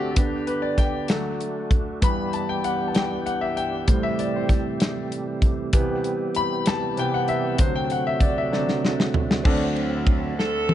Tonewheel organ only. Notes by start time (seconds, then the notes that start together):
Already playing: D3 A3 C4 D4 A4
0.17 D3 B3 G4
1.09 A3 F#4
2.02 E3 G3 B3 G4
3.88 C3 A3
5.73 E3 B3 G4
7.60 D3 F#3 A3 F#4
9.45 D3 F#3 C4